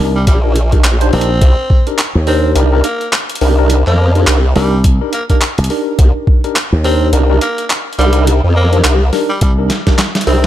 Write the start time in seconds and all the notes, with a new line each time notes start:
0.00 C2 D4 D#4 G4 A#4
0.15 G3
0.27 A#1 G3, kick, closed hi-hat
0.44 D4 D#4 G4 A#4
0.56 closed hi-hat
0.72 D4 D#4 G4 A#4, kick, closed hi-hat
0.84 clap, closed hi-hat
1.01 D4 D#4 G4 C5, closed hi-hat
1.13 A#1 C4 D4 D#4 G4 A#4, open hi-hat
1.21 closed hi-hat
1.41 C2, kick, closed hi-hat
1.70 kick
1.87 D4 D#4 G4 A#4, closed hi-hat
1.98 clap, closed hi-hat
2.15 D#2
2.27 C4 D4 D#4 G4 A#4, open hi-hat
2.55 C2 D4 D#4 G4 A#4, closed hi-hat
2.73 D4 D#4 G4 A#4
2.84 A#3, closed hi-hat
3.01 closed hi-hat
3.13 clap, closed hi-hat
3.30 closed hi-hat
3.35 closed hi-hat
3.41 C2 D4 D#4 G4 A#4, open hi-hat
3.58 D4 D#4 G4 A#4
3.70 closed hi-hat
3.87 F2 A#3, clap
4.15 D4 D#4 G4 A#4, closed hi-hat
4.27 C2, clap, closed hi-hat
4.56 C2 G3 D4 D#4 G4 A#4, snare, open hi-hat
4.84 kick, closed hi-hat
5.01 D4 D#4 G4 A#4
5.13 A#3, closed hi-hat
5.30 A#3 D4 D#4 G4 A#4, kick, closed hi-hat
5.41 clap, closed hi-hat
5.58 C2, closed hi-hat
5.64 closed hi-hat
5.70 D4 D#4 G4 A#4, open hi-hat
5.99 C2, kick, closed hi-hat
6.27 kick
6.44 D4 D#4 G4 A#4, closed hi-hat
6.56 clap, closed hi-hat
6.72 D#2
6.84 C4 D4 D#4 G4 A#4, open hi-hat
7.13 C2 D4 D#4 G4 A#4, closed hi-hat
7.30 D4 D#4 G4 A#4
7.41 A#3, closed hi-hat
7.58 closed hi-hat
7.70 clap, closed hi-hat
7.93 closed hi-hat
7.99 C2 G3 D4 D#4 G4 A#4, closed hi-hat, open hi-hat
8.13 D4 D#4 G4 A#4, closed hi-hat
8.27 closed hi-hat
8.44 F2
8.56 A#3
8.73 D4 D#4 G4 A#4, closed hi-hat
8.84 C2, clap, closed hi-hat
9.13 D4 D#4 G4 A#4, snare, open hi-hat
9.29 G3
9.41 C2 G3, kick, closed hi-hat
9.58 D4 D#4 G4 A#4
9.70 snare, closed hi-hat
9.87 D4 D#4 G4 A#4, kick, snare, closed hi-hat
9.98 snare, clap, closed hi-hat
10.15 snare, closed hi-hat
10.21 closed hi-hat
10.27 C2 C4 D4 D#4 G4 A#4, open hi-hat